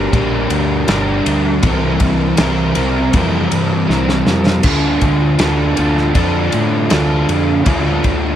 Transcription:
0.00 0.12 G3 medium
0.00 0.12 D4 soft
0.00 0.14 G4 medium
0.00 0.15 A#4 medium
0.12 0.46 A#1 medium
0.12 0.86 G3 loud
0.12 0.87 D4 loud
0.12 0.89 G4 loud
0.12 0.90 A#4 loud
0.12 kick loud
0.12 ride medium
0.50 0.83 D2 medium
0.50 ride medium
0.87 1.20 G1 medium
0.87 1.61 G3 medium
0.87 1.61 D4 medium
0.87 1.62 G4 medium
0.87 snare loud
0.87 ride loud
0.91 1.62 A#4 medium
1.26 1.59 D2 medium
1.26 ride medium
1.63 1.96 C2 loud
1.63 2.76 C3 medium
1.63 2.76 E3 loud
1.63 2.37 G3 medium
1.63 2.39 C4 medium
1.63 2.39 E4 loud
1.63 2.40 A#4 loud
1.63 kick loud
1.63 ride loud
2.00 2.33 C2 loud
2.00 kick medium
2.00 ride medium
2.37 2.72 C2 medium
2.37 2.78 G3 medium
2.37 2.77 C4 medium
2.37 2.76 E4 medium
2.37 snare loud
2.37 ride loud
2.41 2.75 A#4 medium
2.75 3.09 C2 medium
2.75 3.13 G3 medium
2.75 3.15 C4 medium
2.75 3.15 E4 medium
2.75 3.16 A#4 medium
2.75 ride medium
3.13 3.47 F2 loud
3.13 4.27 C3 loud
3.13 4.27 E3 loud
3.13 3.86 G3 loud
3.13 3.88 C4 loud
3.13 3.89 E4 loud
3.13 kick loud
3.13 ride loud
3.17 3.90 A#4 loud
3.51 3.85 G2 medium
3.51 ride medium
3.87 4.22 C2 medium
3.87 4.61 G3 medium
3.87 4.65 C4 medium
3.87 4.63 E4 medium
3.87 4.63 A#4 medium
3.87 snare medium
4.09 snare medium
4.27 4.60 F2 medium
4.27 snare loud
4.47 snare medium
4.63 4.97 D2 medium
4.63 5.38 D3 medium
4.63 5.40 D4 medium
4.63 5.41 F4 medium
4.63 kick loud
4.63 crash loud
4.63 ride loud
4.68 5.42 A4 loud
5.01 5.35 D2 medium
5.01 kick medium
5.01 ride medium
5.39 5.73 D2 medium
5.39 6.14 D3 medium
5.39 5.79 D4 medium
5.39 5.78 F4 medium
5.39 5.76 A4 medium
5.39 snare loud
5.39 ride loud
5.76 6.11 D2 medium
5.76 6.15 D4 medium
5.76 6.16 F4 medium
5.76 6.17 A4 medium
5.76 ride medium
5.97 snare soft
6.14 6.48 F2 medium
6.14 6.89 D3 loud
6.14 6.92 D4 loud
6.14 6.93 F4 medium
6.14 6.92 A4 loud
6.14 kick loud
6.14 ride medium
6.52 6.87 A2 medium
6.52 ride medium
6.90 7.24 D2 medium
6.90 7.63 D3 medium
6.90 7.65 D4 medium
6.90 7.67 F4 medium
6.90 7.67 A4 medium
6.90 snare loud
6.90 ride loud
7.29 7.62 F2 medium
7.29 ride medium
7.65 8.00 D2 loud
7.65 8.36 D3 medium
7.65 8.36 D4 medium
7.65 8.36 F4 medium
7.65 8.36 A4 medium
7.65 kick loud
7.65 ride loud
8.04 8.36 D2 medium
8.04 kick medium
8.04 ride medium

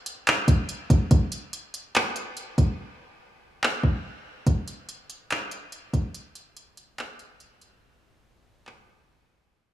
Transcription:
0.06 closed hi-hat medium
0.27 clap loud
0.27 closed hi-hat medium
0.48 kick medium
0.48 closed hi-hat medium
0.69 closed hi-hat medium
0.90 kick medium
0.90 closed hi-hat medium
1.11 kick loud
1.11 closed hi-hat medium
1.32 closed hi-hat medium
1.53 closed hi-hat medium
1.74 closed hi-hat medium
1.95 clap medium
1.95 closed hi-hat medium
2.16 closed hi-hat medium
2.37 closed hi-hat medium
2.58 kick medium
2.58 closed hi-hat medium
3.64 clap medium
3.83 kick medium
4.47 kick loud
4.47 closed hi-hat medium
4.68 closed hi-hat medium
4.89 closed hi-hat medium
5.10 closed hi-hat medium
5.30 clap medium
5.30 closed hi-hat medium
5.51 closed hi-hat medium
5.72 closed hi-hat medium
5.93 kick loud
5.93 closed hi-hat medium
6.14 closed hi-hat medium
6.35 closed hi-hat medium
6.57 closed hi-hat medium
6.77 closed hi-hat medium
6.98 clap medium
6.98 closed hi-hat medium
7.19 closed hi-hat medium
7.40 closed hi-hat medium
7.61 closed hi-hat medium
8.67 clap medium

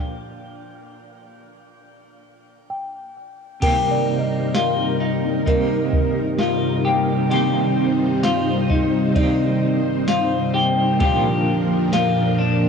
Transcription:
0.00 0.46 A#3 medium
2.70 4.04 G5 medium
3.60 5.46 C3 medium
3.60 10.97 C3 medium
3.60 5.45 D#3 medium
3.60 10.96 G3 medium
3.60 5.47 A#3 medium
3.60 10.97 D#4 medium
3.60 4.54 G4 medium
3.60 7.28 A#4 medium
3.60 5.28 A#4 medium
3.60 kick loud
3.60 crash loud
3.60 ride medium
3.65 5.47 C4 medium
3.65 5.48 G4 medium
3.91 5.54 D5 medium
4.19 5.79 D#5 medium
4.54 5.01 F4 medium
4.54 snare loud
4.54 ride medium
4.54 tambourine medium
5.00 5.45 D#4 medium
5.46 6.85 D#3 medium
5.46 6.88 A#3 medium
5.46 6.86 C4 medium
5.46 6.39 D#4 medium
5.46 6.84 G4 medium
5.46 7.13 A#4 medium
5.46 kick loud
5.46 ride medium
5.93 kick loud
6.38 6.84 F4 medium
6.38 snare loud
6.38 ride medium
6.38 tambourine medium
6.85 7.32 A#3 medium
6.85 7.32 C4 medium
6.85 7.31 G4 medium
6.85 7.30 G4 medium
7.30 9.15 C3 medium
7.30 9.14 D#3 medium
7.30 9.17 A#3 medium
7.30 8.23 G4 loud
7.30 10.97 C5 medium
7.30 ride medium
7.34 9.17 C4 medium
7.34 9.18 G4 loud
8.23 8.70 F4 medium
8.23 snare loud
8.23 ride medium
8.23 tambourine medium
8.70 9.15 D#4 medium
8.70 kick medium
9.15 10.54 D#3 medium
9.15 10.57 A#3 medium
9.15 10.54 C4 medium
9.15 10.08 D#4 medium
9.15 10.53 G4 medium
9.15 10.82 D5 soft
9.15 kick loud
9.15 ride medium
10.08 10.54 F4 medium
10.08 snare loud
10.08 ride medium
10.08 tambourine medium
10.54 11.02 A#3 medium
10.54 11.01 C4 medium
10.54 11.00 G4 medium
10.54 10.99 G4 medium
10.99 12.69 A#2 medium
10.99 12.69 F3 medium
10.99 12.69 A#3 medium
10.99 12.69 D4 medium
10.99 11.92 G4 loud
10.99 12.69 A#4 medium
10.99 kick loud
10.99 ride medium
11.04 12.69 D4 loud
11.04 12.69 F4 loud
11.93 12.39 F4 medium
11.93 snare loud
11.93 ride medium
11.93 tambourine medium
12.38 12.69 D4 medium

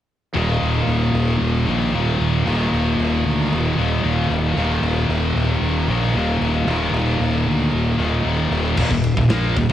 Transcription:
0.34 0.61 D#1 medium
0.34 1.69 D#2 medium
0.34 1.66 A#2 medium
0.34 1.66 D#3 medium
0.61 0.86 D#1 medium
0.87 1.13 D#1 medium
1.13 1.39 D#1 medium
1.40 1.66 D#1 medium
1.67 1.92 A#1 medium
1.67 1.92 D#2 medium
1.67 1.92 A#2 medium
1.67 1.95 D#3 medium
1.93 2.19 D#1 medium
1.93 2.46 D#2 medium
1.93 2.45 A#2 medium
1.93 2.48 D#3 medium
2.20 2.45 D#1 medium
2.46 2.72 D#1 medium
2.46 3.80 D#2 medium
2.46 3.77 A#2 medium
2.46 3.77 D#3 medium
2.72 2.98 D#1 medium
2.99 3.24 D#1 medium
3.25 3.51 D2 medium
3.52 3.77 D#1 medium
3.77 4.03 D#1 medium
3.77 4.04 D#2 medium
3.77 4.03 A#2 medium
3.77 4.07 D#3 medium
4.04 4.29 D#1 medium
4.04 4.56 D#2 medium
4.04 4.57 A#2 medium
4.04 4.59 D#3 medium
4.30 4.55 D#1 medium
4.56 4.81 D#1 medium
4.56 5.90 D#2 medium
4.56 5.88 A#2 medium
4.56 5.88 D#3 medium
4.82 5.08 D#1 medium
5.09 5.35 D#1 medium
5.36 5.61 D#1 medium
5.61 5.87 D#1 medium
5.88 6.14 A#1 medium
5.88 6.15 D#2 medium
5.88 6.14 A#2 medium
5.88 6.17 D#3 medium
6.14 6.40 D#1 medium
6.14 6.67 D#2 medium
6.14 6.67 A#2 medium
6.14 6.70 D#3 medium
6.40 6.66 D#1 medium
6.67 6.92 D#1 medium
6.67 7.98 D#2 medium
6.67 7.98 A#2 medium
6.67 7.97 D#3 medium
6.93 7.19 D#1 medium
7.19 7.45 D#1 medium
7.46 7.72 D2 medium
7.72 7.98 D#1 medium
7.98 8.24 D#1 medium
7.98 8.23 D#2 medium
7.98 8.24 A#2 medium
7.98 8.23 D#3 medium
8.24 8.50 D#1 medium
8.24 8.75 D#2 medium
8.24 8.76 A#2 medium
8.24 8.77 D#3 medium
8.51 8.77 D#1 medium
8.77 8.90 D#1 medium
8.77 8.90 D#2 medium
8.77 8.90 A#2 medium
8.77 kick loud
8.77 crash loud
8.91 9.15 D#1 medium
8.91 9.12 D#2 medium
8.91 9.12 A#2 medium
8.91 kick medium
9.04 ride medium
9.17 9.29 D#1 medium
9.17 9.30 D#2 medium
9.17 9.28 A#2 medium
9.17 kick loud
9.29 9.54 A#1 medium
9.29 9.55 A#2 medium
9.29 9.55 F3 loud
9.29 9.56 A#3 medium
9.29 snare loud
9.29 ride loud
9.56 9.69 D#1 medium
9.56 9.68 D#2 medium
9.56 9.68 A#2 medium
9.56 kick loud
9.56 ride medium
9.69 9.73 D#2 medium
9.69 9.73 A#2 medium

